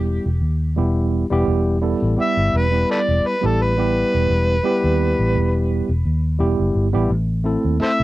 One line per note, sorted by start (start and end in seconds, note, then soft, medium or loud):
0.00 0.18 E1 medium
0.00 0.27 G3 medium
0.00 0.27 B3 medium
0.00 0.27 E4 medium
0.00 0.28 G4 medium
0.26 0.40 E1 medium
0.42 0.79 D#2 medium
0.76 1.23 E1 medium
0.76 1.24 G3 medium
0.76 1.25 B3 medium
0.76 1.25 E4 medium
0.76 1.25 G4 medium
1.30 1.45 E1 medium
1.30 1.76 G3 medium
1.30 1.77 B3 medium
1.30 1.77 E4 medium
1.30 1.78 G4 loud
1.48 1.93 E1 loud
1.81 2.14 G3 medium
1.81 2.14 B3 medium
1.81 2.14 E4 medium
1.81 2.14 A4 medium
2.02 2.16 A1 medium
2.16 2.65 G3 medium
2.16 2.65 B3 medium
2.16 2.65 E4 medium
2.16 2.66 G4 medium
2.21 2.58 E5 medium
2.37 2.51 G1 medium
2.54 2.83 E1 medium
2.54 2.89 B4 medium
2.71 3.33 G3 medium
2.71 3.34 B3 medium
2.71 3.34 E4 medium
2.71 3.34 G4 medium
2.91 2.99 A4 medium
2.91 3.00 B4 medium
2.91 3.28 D5 loud
3.08 3.22 E1 medium
3.27 3.47 B4 medium
3.41 4.03 A1 medium
3.41 3.73 G3 medium
3.41 3.73 B3 medium
3.41 3.73 E4 medium
3.41 3.74 G4 medium
3.46 3.63 A4 medium
3.62 5.67 B4 medium
3.77 4.54 G3 medium
3.77 4.55 B3 medium
3.77 4.55 E4 medium
3.77 4.56 G4 loud
4.14 4.27 E1 medium
4.30 4.59 E1 medium
4.63 5.89 G3 medium
4.63 5.90 B3 medium
4.63 5.90 E4 medium
4.63 5.90 G4 loud
4.84 5.13 D#2 medium
5.19 5.37 A1 medium
5.35 5.81 E1 medium
5.89 6.02 E1 medium
6.06 6.40 D#2 medium
6.38 6.57 E1 medium
6.38 6.87 G3 medium
6.38 6.87 B3 medium
6.38 6.87 E4 medium
6.38 6.88 G4 loud
6.60 6.74 F#1 medium
6.75 6.92 G1 medium
6.93 7.09 A1 medium
6.93 7.09 G3 medium
6.93 7.10 B3 medium
6.93 7.10 E4 medium
6.93 7.10 G4 loud
7.10 7.56 A1 loud
7.44 7.76 A3 medium
7.44 7.76 C4 medium
7.44 7.77 E4 medium
7.44 7.77 A4 medium
7.65 7.78 D#2 medium
7.79 8.04 A3 medium
7.79 8.04 C4 medium
7.79 8.04 E4 medium
7.79 8.04 A4 medium
7.79 7.90 A4 medium
7.79 7.91 C5 medium
7.79 8.04 E5 loud
8.00 8.04 C2 medium